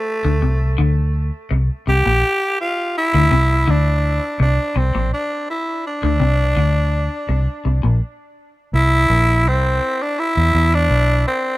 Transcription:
<<
  \new Staff \with { instrumentName = "Tenor saxophone" } { \time 4/4 \key c \mixolydian \tempo 4 = 83 a4 r4. g'4 f'8 | e'4 d'4 d'8 c'8 d'8 e'8 | d'2. r4 | e'4 c'8. d'16 e'8. d'8. c'8 | }
  \new Staff \with { instrumentName = "Clean electric guitar" } { \clef bass \time 4/4 \key c \mixolydian r16 d16 c8 d8 r8 c16 r16 c16 bes,16 r4 | r16 d16 c8 d8 r8 c16 r16 c16 bes,16 r4 | r16 d16 c8 d8 r8 c16 r16 c16 bes,16 r4 | r1 | }
  \new Staff \with { instrumentName = "Fingered electric bass" } { \clef bass \time 4/4 \key c \mixolydian r16 d,16 c,8 d,8. r16 c,16 r16 c,16 bes,,16 r4 | r16 d,16 c,8 d,8. r16 c,16 r16 c,16 bes,,16 r4 | r16 d,16 c,8 d,8. r16 c,16 r16 c,16 bes,,16 r4 | c,8 bes,,8 c,8 r8. e,16 e,8 b,,8 r8 | }
>>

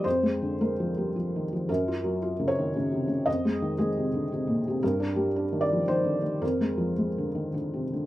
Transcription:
<<
  \new Staff \with { instrumentName = "Felt piano" } { \time 3/4 \key bes \mixolydian \tempo 4 = 112 c''4 bes'4. r8 | bes'4. des''4. | ees''4 aes'2 | bes'4. d''8 c''4 |
bes'2 r4 | }
  \new Staff \with { instrumentName = "Felt piano" } { \clef bass \time 3/4 \key bes \mixolydian \tuplet 3/2 { f,8 aes8 d8 aes8 f8 g8 f8 ees8 f8 } | \tuplet 3/2 { ges,8 f'8 ges8 f'8 des8 ees8 des8 c8 des8 } | \tuplet 3/2 { f,8 aes8 ees8 aes8 c8 d8 c8 bes,8 c8 } | \tuplet 3/2 { g,8 d'8 g8 d'8 ees8 f8 ees8 d8 ees8 } |
\tuplet 3/2 { f,8 aes8 f8 aes8 d8 ees8 d8 c8 d8 } | }
>>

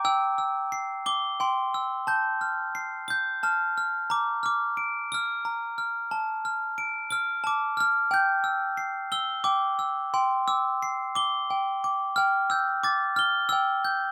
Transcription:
\new Staff \with { instrumentName = "Glockenspiel" } { \time 6/8 \key c \mixolydian \tempo 4. = 59 << { g''8 e'''8 c''''8 g''''8 g''8 e'''8 | a''8 f'''8 c''''8 a''''8 a''8 f'''8 | bes''8 f'''8 d''''8 bes''''8 bes''8 f'''8 | a''8 f'''8 d''''8 a''''8 a''8 f'''8 |
g''8 e'''8 c''''8 g''''8 g''8 e'''8 | g''8 d'''8 c''''8 g''''8 g''8 d'''8 | g''8 g'''8 a'''8 g''''8 g''8 g'''8 | } \\ { e'''4. d'''8 c'''4 | g'''8 r4 g'''8 f'''4 | d'''8 d'''4 f'''4 r8 | r4. f'''8 d'''8 f'''8 |
g'''4. e'''8 d'''4 | c'''8 e'''4 d'''4. | f'''8 e'''8 d'''8 f'''8 e'''4 | } >> }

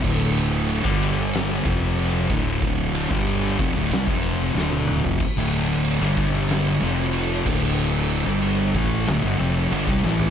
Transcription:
<<
  \new Staff \with { instrumentName = "Distorted electric guitar" } { \clef bass \time 4/4 \key d \minor \tempo 4 = 93 <d, a, d>4~ <d, a, d>16 <g, d g>4~ <g, d g>16 <f, c f>4 <d, a, d>8~ | <d, a, d>8. <g, d g>8. <f, c>16 <d, a,>16 <c g>16 <f, c f>8. <d, a, d>8. <f, c>16 | r16 <d, a, d>4 <g, d g>4~ <g, d g>16 <f, c f>4 <d, a, d>8~ | <d, a, d>8. <g, d g>8. <a, e a>8 <d, a,>16 <g, d>16 <f, c f>8 <g, d>16 <c g>16 <a, e a>8 | }
  \new Staff \with { instrumentName = "Distorted electric guitar" } { \clef bass \time 4/4 \key d \minor <d, a, d>4~ <d, a, d>16 <g, d g>4~ <g, d g>16 <f, c f>4 <d, a, d>8~ | <d, a, d>8. <g, d g>8. <f, c>16 <d, a,>16 <c g>16 <f, c f>8. <d, a, d>8. <f, c>16 | r16 <d, a, d>4 <g, d g>4~ <g, d g>16 <f, c f>4 <d, a, d>8~ | <d, a, d>8. <g, d g>8. <a, e a>8 <d, a,>16 <g, d>16 <f, c f>8 <g, d>16 <c g>16 <a, e a>8 | }
  \new Staff \with { instrumentName = "Fingered electric bass" } { \clef bass \time 4/4 \key d \minor d,,4~ d,,16 g,,4~ g,,16 f,,4 d,,8~ | d,,8. g,,8. f,,16 d,,16 c,16 f,,8. d,,8. f,,16 | r16 d,,4 g,,4~ g,,16 f,,4 d,,8~ | d,,8. g,,8. a,,8 d,,16 g,,16 f,,8 g,,16 c,16 a,,8 | }
  \new DrumStaff \with { instrumentName = "Drums" } \drummode { \time 4/4 <cymc bd>8 cymr8 cymr16 bd16 cymr8 <cymr sn>8 <bd cymr>8 cymr8 <bd cymr>8 | <bd cymr>8 cymr16 bd16 cymr8 <bd cymr>8 <cymr sn>16 bd16 cymr8 sn16 tommh16 toml16 tomfh16 | <cymc bd>8 cymr8 cymr8 <bd cymr>8 <cymr sn>16 sn16 cymr8 cymr8 <cymc bd>8 | r8 cymr8 cymr8 <bd cymr>8 <cymr sn>8 cymr8 cymr16 bd16 sn16 tomfh16 | }
>>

